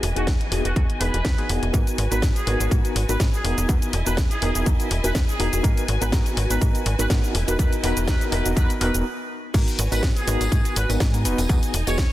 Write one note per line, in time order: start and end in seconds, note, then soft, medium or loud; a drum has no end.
0.00 0.12 E1 loud
0.00 1.72 E3 medium
0.00 1.72 D#5 medium
0.00 3.40 G#5 medium
0.00 open hi-hat loud
0.16 0.29 E1 medium
0.16 0.29 B3 medium
0.16 0.30 D#4 medium
0.16 0.29 F#4 medium
0.16 0.30 F#4 medium
0.16 0.30 G#4 medium
0.16 closed hi-hat soft
0.27 0.37 E2 loud
0.27 kick loud
0.27 snare loud
0.27 closed hi-hat medium
0.41 closed hi-hat soft
0.51 0.61 E1 medium
0.51 0.98 B3 medium
0.51 0.98 D#4 medium
0.51 0.98 F#4 medium
0.51 0.98 G#4 medium
0.51 open hi-hat medium
0.65 0.73 E1 medium
0.65 0.72 F#4 medium
0.65 closed hi-hat soft
0.76 0.85 E2 medium
0.76 0.85 F#4 medium
0.76 kick loud
0.76 closed hi-hat medium
0.90 closed hi-hat soft
1.00 1.10 E1 medium
1.00 1.16 B3 medium
1.00 1.16 D#4 medium
1.00 1.16 F#4 medium
1.00 1.16 G#4 medium
1.00 1.49 B4 medium
1.00 open hi-hat loud
1.14 1.22 E1 medium
1.14 closed hi-hat soft
1.25 1.34 E2 medium
1.25 kick loud
1.25 snare loud
1.25 closed hi-hat medium
1.38 1.71 B3 loud
1.38 1.71 D#4 medium
1.38 1.71 F#4 medium
1.38 1.71 G#4 loud
1.38 closed hi-hat soft
1.49 1.59 E1 loud
1.49 open hi-hat medium
1.63 1.70 E1 medium
1.63 closed hi-hat medium
1.73 1.83 G#2 loud
1.73 1.96 B3 medium
1.73 1.97 D#4 medium
1.73 1.97 F#4 medium
1.73 3.43 F#4 medium
1.73 1.97 A#4 medium
1.73 3.43 B4 medium
1.73 kick loud
1.73 closed hi-hat medium
1.73 cabasa medium
1.87 closed hi-hat soft
1.87 cabasa soft
1.98 2.07 G#1 loud
1.98 open hi-hat loud
2.11 2.24 G#1 medium
2.11 2.25 B3 medium
2.11 2.25 D#4 medium
2.11 2.25 F#4 medium
2.11 2.25 A#4 medium
2.11 2.24 B4 medium
2.11 closed hi-hat soft
2.11 cabasa medium
2.22 2.32 G#2 loud
2.22 kick loud
2.22 snare loud
2.22 closed hi-hat medium
2.22 cabasa medium
2.36 2.69 G#4 medium
2.36 closed hi-hat soft
2.36 cabasa soft
2.46 2.56 G#1 loud
2.46 2.69 B3 medium
2.46 2.69 D#4 medium
2.46 2.70 F#4 medium
2.46 2.70 A#4 medium
2.46 open hi-hat medium
2.60 2.68 G#1 medium
2.60 closed hi-hat soft
2.60 cabasa medium
2.71 2.81 G#2 loud
2.71 2.94 B3 medium
2.71 2.94 D#4 medium
2.71 2.94 F#4 medium
2.71 2.94 A#4 medium
2.71 kick loud
2.71 closed hi-hat medium
2.71 cabasa medium
2.85 closed hi-hat soft
2.85 cabasa soft
2.96 3.05 G#1 loud
2.96 open hi-hat loud
3.09 3.17 G#1 medium
3.09 3.22 B3 medium
3.09 3.22 D#4 medium
3.09 3.22 F#4 medium
3.09 3.23 A#4 medium
3.09 3.21 B4 medium
3.09 closed hi-hat soft
3.09 cabasa medium
3.20 3.29 G#2 medium
3.20 kick loud
3.20 snare loud
3.20 closed hi-hat medium
3.20 cabasa medium
3.33 3.67 G#4 medium
3.33 cabasa soft
3.44 3.54 E1 loud
3.44 3.67 B3 medium
3.44 3.67 D#4 medium
3.44 5.62 E4 medium
3.44 3.67 F#4 medium
3.44 3.67 A#4 medium
3.44 5.62 D#5 medium
3.44 9.02 G#5 medium
3.44 open hi-hat medium
3.58 3.66 E1 medium
3.58 closed hi-hat medium
3.58 cabasa medium
3.68 3.78 E2 loud
3.68 3.92 B3 medium
3.68 3.92 D#4 medium
3.68 3.92 F#4 medium
3.68 3.92 A#4 medium
3.68 kick loud
3.68 closed hi-hat medium
3.68 cabasa medium
3.82 closed hi-hat soft
3.82 cabasa soft
3.93 4.02 E1 loud
3.93 open hi-hat loud
4.06 4.19 E1 medium
4.06 4.20 B3 medium
4.06 4.20 D#4 medium
4.06 4.20 F#4 medium
4.06 4.20 A#4 medium
4.06 4.19 B4 medium
4.06 closed hi-hat soft
4.06 cabasa medium
4.17 4.27 E2 loud
4.17 kick loud
4.17 snare loud
4.17 closed hi-hat medium
4.17 cabasa medium
4.31 4.65 G#4 medium
4.31 closed hi-hat soft
4.31 cabasa soft
4.41 4.51 E1 loud
4.41 4.64 B3 medium
4.41 4.65 D#4 medium
4.41 4.65 F#4 medium
4.41 4.65 A#4 medium
4.41 open hi-hat medium
4.55 4.63 E1 medium
4.55 closed hi-hat medium
4.55 cabasa medium
4.66 4.76 E2 loud
4.66 4.89 B3 medium
4.66 4.89 D#4 medium
4.66 4.89 F#4 medium
4.66 4.90 A#4 medium
4.66 kick loud
4.66 closed hi-hat medium
4.66 cabasa medium
4.80 closed hi-hat soft
4.80 cabasa soft
4.91 5.00 E1 loud
4.91 open hi-hat loud
5.04 5.12 E1 medium
5.04 5.17 B3 medium
5.04 5.17 D#4 medium
5.04 5.18 F#4 medium
5.04 5.18 A#4 medium
5.04 5.17 B4 medium
5.04 closed hi-hat medium
5.04 cabasa medium
5.15 5.24 E2 medium
5.15 kick loud
5.15 snare loud
5.15 closed hi-hat medium
5.15 cabasa medium
5.29 5.62 G#4 medium
5.29 cabasa soft
5.39 5.49 E1 loud
5.39 5.62 B3 medium
5.39 5.62 D#4 medium
5.39 5.62 F#4 medium
5.39 5.62 A#4 medium
5.39 open hi-hat medium
5.53 5.61 E1 medium
5.53 closed hi-hat medium
5.53 cabasa medium
5.63 5.73 G#2 loud
5.63 5.87 B3 medium
5.63 5.87 D#4 medium
5.63 5.87 F#4 medium
5.63 7.33 F#4 medium
5.63 5.87 A#4 loud
5.63 7.33 B4 medium
5.63 kick loud
5.63 closed hi-hat medium
5.63 cabasa medium
5.77 closed hi-hat soft
5.77 cabasa soft
5.88 5.98 G#1 loud
5.88 open hi-hat loud
6.01 6.14 G#1 medium
6.01 6.11 B3 medium
6.01 6.11 D#4 medium
6.01 6.11 F#4 medium
6.01 6.11 A#4 medium
6.01 6.11 B4 medium
6.01 closed hi-hat medium
6.01 cabasa medium
6.12 6.22 G#2 loud
6.12 6.35 B3 medium
6.12 6.36 D#4 medium
6.12 6.36 F#4 medium
6.12 6.36 A#4 loud
6.12 kick loud
6.12 snare loud
6.12 closed hi-hat medium
6.12 cabasa medium
6.26 closed hi-hat soft
6.26 cabasa soft
6.37 6.46 G#1 loud
6.37 open hi-hat medium
6.50 6.58 G#1 medium
6.50 6.59 B3 medium
6.50 6.60 D#4 medium
6.50 6.60 F#4 medium
6.50 6.60 A#4 medium
6.50 6.60 B4 medium
6.50 closed hi-hat medium
6.50 cabasa medium
6.61 6.71 G#2 medium
6.61 6.84 B3 medium
6.61 6.84 D#4 medium
6.61 6.85 F#4 medium
6.61 6.85 A#4 medium
6.61 kick loud
6.61 closed hi-hat medium
6.61 cabasa medium
6.75 closed hi-hat soft
6.75 cabasa soft
6.86 6.95 G#1 loud
6.86 open hi-hat loud
6.99 7.07 G#1 medium
6.99 7.08 B3 medium
6.99 7.08 D#4 medium
6.99 7.08 F#4 medium
6.99 7.09 A#4 medium
6.99 7.09 B4 loud
6.99 closed hi-hat medium
6.99 cabasa medium
7.10 7.20 G#2 medium
7.10 7.33 B3 medium
7.10 7.33 D#4 medium
7.10 7.33 F#4 medium
7.10 7.33 A#4 loud
7.10 kick loud
7.10 snare loud
7.10 closed hi-hat medium
7.10 cabasa medium
7.24 cabasa soft
7.34 7.44 E1 loud
7.34 9.04 E4 medium
7.34 9.04 D#5 medium
7.34 open hi-hat medium
7.47 7.56 E1 medium
7.47 7.57 B3 medium
7.47 7.57 D#4 medium
7.47 7.57 F#4 medium
7.47 7.57 A#4 loud
7.47 7.57 B4 medium
7.47 closed hi-hat medium
7.47 cabasa medium
7.59 7.68 E2 loud
7.59 7.82 D#4 medium
7.59 7.82 F#4 medium
7.59 7.82 A#4 loud
7.59 7.74 B4 medium
7.59 kick loud
7.59 closed hi-hat medium
7.59 cabasa medium
7.73 closed hi-hat soft
7.73 cabasa soft
7.83 7.93 E1 loud
7.83 8.06 B3 medium
7.83 8.06 D#4 medium
7.83 8.06 F#4 medium
7.83 8.06 A#4 loud
7.83 7.98 B4 medium
7.83 open hi-hat loud
7.97 8.09 E1 medium
7.97 closed hi-hat medium
7.97 cabasa medium
8.07 8.17 E2 loud
8.07 8.30 B3 medium
8.07 8.30 D#4 medium
8.07 8.31 F#4 medium
8.07 8.31 A#4 loud
8.07 8.22 B4 medium
8.07 kick loud
8.07 snare loud
8.07 closed hi-hat medium
8.07 cabasa medium
8.21 closed hi-hat soft
8.21 cabasa soft
8.32 8.41 E1 loud
8.32 8.55 B3 medium
8.32 8.55 D#4 medium
8.32 8.55 F#4 medium
8.32 8.55 A#4 medium
8.32 8.47 B4 medium
8.32 open hi-hat medium
8.46 8.53 E1 medium
8.46 closed hi-hat medium
8.46 cabasa medium
8.56 8.66 E2 loud
8.56 8.79 B3 medium
8.56 8.79 D#4 medium
8.56 8.79 F#4 medium
8.56 8.79 A#4 medium
8.56 8.71 B4 loud
8.56 kick loud
8.56 closed hi-hat medium
8.56 cabasa medium
8.70 closed hi-hat soft
8.70 cabasa soft
8.80 8.90 E1 loud
8.80 9.03 B3 medium
8.80 9.04 D#4 medium
8.80 9.04 F#4 medium
8.80 9.04 A#4 loud
8.80 8.95 B4 medium
8.80 open hi-hat loud
8.94 9.02 E1 medium
8.94 closed hi-hat medium
8.94 cabasa medium
9.54 9.64 G#2 loud
9.54 9.77 B3 medium
9.54 11.23 B3 medium
9.54 9.77 D#4 medium
9.54 11.23 F#4 medium
9.54 9.77 F#4 medium
9.54 9.77 A#4 loud
9.54 12.12 G#5 medium
9.54 kick loud
9.54 closed hi-hat medium
9.54 crash loud
9.54 tambourine medium
9.54 cabasa soft
9.67 closed hi-hat soft
9.67 tambourine soft
9.67 cabasa soft
9.79 9.88 G#1 loud
9.79 open hi-hat loud
9.79 cabasa medium
9.91 10.04 G#1 medium
9.91 10.05 B3 medium
9.91 10.05 D#4 medium
9.91 10.05 F#4 medium
9.91 10.05 A#4 medium
9.91 10.04 B4 medium
9.91 closed hi-hat soft
9.91 tambourine medium
9.91 cabasa soft
10.03 10.12 G#2 loud
10.03 kick loud
10.03 snare loud
10.03 closed hi-hat medium
10.03 cabasa soft
10.16 10.74 G#4 loud
10.16 closed hi-hat soft
10.16 tambourine soft
10.16 cabasa soft
10.27 10.37 G#1 loud
10.27 10.73 B3 medium
10.27 10.73 D#4 medium
10.27 10.74 F#4 medium
10.27 10.74 A#4 loud
10.27 open hi-hat medium
10.27 cabasa medium
10.41 10.48 G#1 medium
10.41 closed hi-hat soft
10.41 tambourine medium
10.41 cabasa soft
10.52 10.61 G#2 medium
10.52 kick loud
10.52 closed hi-hat medium
10.52 cabasa soft
10.65 closed hi-hat soft
10.65 tambourine soft
10.65 cabasa soft
10.76 10.86 G#1 loud
10.76 10.91 B4 medium
10.76 open hi-hat loud
10.76 cabasa medium
10.89 10.97 G#1 medium
10.89 11.10 B3 medium
10.89 11.10 D#4 medium
10.89 11.10 F#4 medium
10.89 11.10 A#4 medium
10.89 closed hi-hat soft
10.89 tambourine medium
10.89 cabasa soft
11.00 11.26 G#2 loud
11.00 kick loud
11.00 snare loud
11.00 closed hi-hat medium
11.00 cabasa soft
11.14 11.22 B3 medium
11.14 11.22 D#4 medium
11.14 11.22 F#4 medium
11.14 11.23 A#4 medium
11.14 closed hi-hat soft
11.14 tambourine soft
11.14 cabasa soft
11.25 11.34 E1 loud
11.25 11.47 B3 medium
11.25 11.47 D#4 medium
11.25 12.12 D#4 medium
11.25 11.47 F#4 medium
11.25 11.47 B4 loud
11.25 12.12 D#5 medium
11.25 open hi-hat medium
11.25 cabasa medium
11.38 11.46 E1 medium
11.38 closed hi-hat soft
11.38 tambourine medium
11.38 cabasa soft
11.49 11.59 E2 loud
11.49 11.72 B3 medium
11.49 11.72 D#4 medium
11.49 11.72 F#4 medium
11.49 11.73 G#4 loud
11.49 kick loud
11.49 closed hi-hat medium
11.49 tambourine medium
11.49 cabasa soft
11.62 closed hi-hat soft
11.62 tambourine soft
11.62 cabasa soft
11.74 11.83 E1 loud
11.74 open hi-hat loud
11.74 cabasa medium
11.87 12.00 E1 medium
11.87 12.00 B3 medium
11.87 12.00 D#4 medium
11.87 12.01 F#4 medium
11.87 12.01 G#4 medium
11.87 12.12 C#5 loud
11.87 closed hi-hat soft
11.87 tambourine medium
11.87 cabasa soft
11.98 12.07 E2 loud
11.98 kick loud
11.98 snare loud
11.98 closed hi-hat medium
11.98 cabasa soft